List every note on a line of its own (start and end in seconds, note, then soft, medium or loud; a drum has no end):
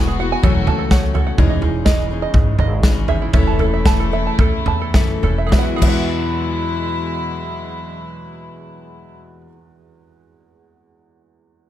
0.00 0.32 E1 loud
0.00 0.39 E2 medium
0.00 0.39 E3 medium
0.00 0.41 F#3 medium
0.00 0.20 G#3 medium
0.00 0.42 G#3 medium
0.00 0.20 B3 medium
0.00 0.41 B3 medium
0.00 0.42 B3 medium
0.00 0.20 E4 medium
0.00 0.41 E4 medium
0.00 0.18 F#4 medium
0.00 1.36 F#4 medium
0.00 0.42 G#4 medium
0.00 0.42 E5 medium
0.00 0.19 F#5 medium
0.00 0.31 G#5 medium
0.07 0.43 G#4 medium
0.20 0.44 B3 medium
0.20 0.44 E4 medium
0.20 0.43 F#4 medium
0.20 0.43 F#5 medium
0.32 0.44 G#5 medium
0.42 0.64 E1 loud
0.42 1.34 E2 medium
0.42 5.48 C#3 medium
0.42 0.91 E3 medium
0.42 1.36 F#3 medium
0.42 1.37 F#3 medium
0.42 0.89 F#3 loud
0.42 1.37 A3 medium
0.42 1.36 A3 medium
0.42 0.90 A3 loud
0.42 1.36 C#4 medium
0.42 0.92 C#4 medium
0.42 0.92 F#4 loud
0.42 1.36 A4 medium
0.42 0.77 A4 medium
0.42 0.90 C#5 medium
0.42 kick loud
0.42 floor tom loud
0.67 1.30 C#2 loud
0.67 1.15 A5 medium
0.67 floor tom medium
0.79 1.13 A4 medium
0.90 1.14 F#3 medium
0.90 1.15 A3 medium
0.90 1.14 C#4 medium
0.90 1.13 F#4 medium
0.90 1.13 C#5 medium
0.90 1.25 F#5 medium
0.90 kick loud
0.90 snare loud
1.14 1.39 A3 medium
1.14 1.38 C#4 medium
1.14 1.38 F#4 medium
1.14 1.38 A4 medium
1.14 1.37 F#5 medium
1.14 floor tom medium
1.27 1.38 F#5 medium
1.37 2.23 E1 medium
1.37 3.29 E2 medium
1.37 1.62 E3 loud
1.37 3.29 E3 medium
1.37 5.48 E3 medium
1.37 3.29 G#3 medium
1.37 3.31 G#3 medium
1.37 1.63 C#4 medium
1.37 3.29 D#4 medium
1.37 1.61 D#4 loud
1.37 3.29 E4 medium
1.37 1.60 G#4 medium
1.37 3.30 C#5 medium
1.37 3.30 D#5 medium
1.37 kick loud
1.37 floor tom loud
1.50 1.84 D#5 medium
1.61 1.86 C#4 medium
1.61 1.86 D#4 medium
1.61 1.86 G#4 medium
1.61 floor tom medium
1.85 2.10 E3 medium
1.85 2.11 C#4 medium
1.85 2.10 D#4 medium
1.85 2.09 G#4 medium
1.85 2.21 D#5 medium
1.85 kick loud
1.85 snare loud
2.11 2.83 C#4 soft
2.11 2.84 D#4 medium
2.11 2.84 G#4 medium
2.22 2.58 D#5 medium
2.34 2.56 G#1 loud
2.34 kick loud
2.34 floor tom loud
2.59 3.25 G#1 loud
2.59 3.08 D#5 medium
2.59 floor tom medium
2.83 3.08 E3 medium
2.83 3.09 C#4 medium
2.83 3.08 D#4 medium
2.83 3.07 G#4 medium
2.83 kick loud
2.83 snare loud
3.08 3.34 C#4 soft
3.08 3.34 D#4 medium
3.08 3.33 G#4 medium
3.08 3.33 E5 medium
3.08 floor tom medium
3.22 3.34 E4 medium
3.33 4.26 E1 medium
3.33 5.48 E2 medium
3.33 5.48 E3 medium
3.33 3.59 E3 medium
3.33 5.48 A3 medium
3.33 5.50 A3 medium
3.33 3.60 A3 loud
3.33 5.48 C#4 medium
3.33 3.60 C#4 medium
3.33 5.48 E4 medium
3.33 5.50 E4 medium
3.33 3.58 A4 loud
3.33 5.48 C#5 medium
3.33 3.72 E5 loud
3.33 5.48 E5 medium
3.33 kick loud
3.33 floor tom loud
3.47 3.85 A5 medium
3.59 3.85 A3 soft
3.59 3.86 C#4 medium
3.59 3.85 A4 medium
3.59 3.99 A4 medium
3.59 floor tom medium
3.74 4.12 E5 medium
3.85 4.12 E3 medium
3.85 4.12 A3 medium
3.85 4.11 C#4 medium
3.85 4.10 A4 medium
3.85 4.26 A5 medium
3.85 kick loud
3.85 snare loud
4.00 4.39 A4 medium
4.12 4.94 A3 soft
4.12 4.94 C#4 soft
4.12 4.94 A4 medium
4.12 4.67 E5 medium
4.27 4.67 A5 medium
4.39 4.63 E2 loud
4.39 4.80 A4 medium
4.39 kick loud
4.39 floor tom loud
4.66 4.91 E2 medium
4.66 5.24 A5 medium
4.66 floor tom medium
4.81 5.22 A4 medium
4.94 5.20 F#1 medium
4.94 5.23 E3 medium
4.94 5.23 A3 medium
4.94 5.22 C#4 medium
4.94 5.21 A4 medium
4.94 5.37 E5 medium
4.94 kick loud
4.94 snare loud
5.22 5.49 E1 medium
5.22 5.53 A3 medium
5.22 5.52 C#4 medium
5.22 5.52 A4 medium
5.22 5.46 A4 medium
5.22 floor tom medium
5.38 5.52 E5 medium
5.47 5.78 E3 medium
5.47 5.68 G#3 medium
5.47 5.66 G#4 medium
5.52 5.69 E2 medium
5.52 9.18 B2 medium
5.52 9.18 F#3 medium
5.52 5.81 G#3 medium
5.52 9.17 G#3 medium
5.52 5.84 B3 medium
5.52 9.18 E4 medium
5.52 5.68 F#4 medium
5.52 5.69 B4 medium
5.52 5.69 E5 medium
5.52 5.70 E5 medium
5.52 kick loud
5.52 snare loud
5.58 5.86 E4 medium
5.58 5.81 F#4 loud
5.58 5.72 F#5 medium
5.76 9.47 E3 medium
5.76 9.41 G#4 medium
5.81 9.47 E2 loud
5.81 9.47 E2 medium
5.81 9.45 G#3 medium
5.81 9.50 G#3 medium
5.81 9.53 B3 medium
5.81 9.46 F#4 medium
5.81 9.47 B4 medium
5.81 9.47 E5 medium
5.81 9.48 E5 medium
5.81 kick loud
5.81 crash medium
5.87 9.55 E4 medium
5.87 9.58 F#4 loud
5.87 9.53 F#5 medium